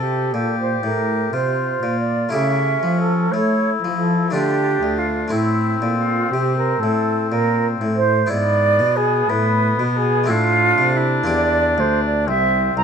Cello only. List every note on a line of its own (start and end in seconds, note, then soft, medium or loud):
0.00 0.35 C3 soft
0.34 0.83 A#2 soft
0.84 1.32 A2 soft
1.34 1.82 C3 soft
1.84 2.32 A#2 soft
2.34 2.82 C#3 medium
2.83 3.32 F3 soft
3.33 3.82 A3 medium
3.83 4.34 F3 medium
4.33 4.82 D3 medium
4.83 5.32 D2 soft
5.33 5.82 A2 medium
5.82 6.31 A#2 soft
6.32 6.81 C3 medium
6.81 7.33 A2 medium
7.31 7.81 A#2 medium
7.81 8.30 A2 medium
8.31 8.81 G#2 medium
8.80 9.29 B2 medium
9.29 9.78 A2 medium
9.80 10.30 B2 medium
10.29 10.78 A2 medium
10.79 11.27 C3 medium
11.28 11.79 E2 medium
11.77 12.29 D2 medium
12.27 12.76 C2 medium
12.77 12.84 C2 medium